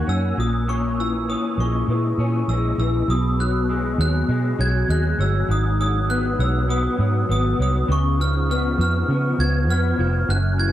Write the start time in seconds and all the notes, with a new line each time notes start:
Already playing: D#3 A#3 F#4 F#6
0.07 F#2 C#4 E6
0.38 A#1 A#2 D#6
0.68 A#2 C#4 C#6
0.99 E3 E6
1.28 C#4 D#6
1.58 A#1 G#3 C#6
1.88 A#2 E3
2.18 A#2 C#4
2.48 A#1 G#3 E6
2.78 A#1 E3 E6
3.08 B1 B2 D#6
3.39 F#3 F#6
3.69 G#3
3.98 D#2 F#3 F#6
4.29 B2 G#3
4.59 B1 F#3 G#6
4.88 D#2 G#3 F#6
5.18 G1 F#3 E6
5.48 G#1 G#2 D#6
5.80 F#3 D#6
6.09 B3 F#6
6.39 B1 F#3 E6
6.69 B3 D#6
6.99 G#2 F#3
7.29 G#1 B3 D#6
7.59 C2 F#3 D#6
7.88 C#2 C#3 C#6
8.19 F3 F6
8.50 B3 F6
8.78 F2 F3 F6
9.08 C#3 B3
9.39 C#2 F3 G#6
9.68 F2 B3 F6
9.99 F1 F3
10.29 F#1 F#2 F#6
10.58 E3 G#6